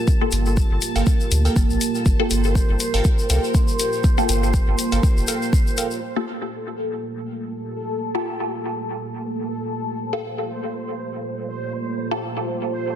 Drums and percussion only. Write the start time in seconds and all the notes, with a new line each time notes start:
0.07 kick, shaker
0.32 open hi-hat, shaker
0.46 shaker
0.57 kick, shaker
0.82 open hi-hat, shaker
0.96 shaker
1.06 kick, shaker
1.20 shaker
1.32 open hi-hat, shaker
1.45 shaker
1.56 kick, shaker
1.70 shaker
1.81 open hi-hat, shaker
1.95 shaker
2.06 kick, shaker
2.30 open hi-hat, shaker
2.44 shaker
2.55 kick, shaker
2.80 open hi-hat, shaker
2.94 shaker
3.04 kick, shaker
3.19 shaker
3.30 open hi-hat, shaker
3.44 shaker
3.54 kick, shaker
3.68 shaker
3.79 open hi-hat, shaker
3.92 shaker
4.04 kick, shaker
4.18 shaker
4.29 open hi-hat, shaker
4.43 shaker
4.54 kick, shaker
4.79 open hi-hat, shaker
4.92 open hi-hat, shaker
5.03 kick, shaker
5.17 shaker
5.27 open hi-hat, shaker
5.42 shaker
5.53 kick, shaker
5.67 shaker
5.77 open hi-hat, shaker
5.91 shaker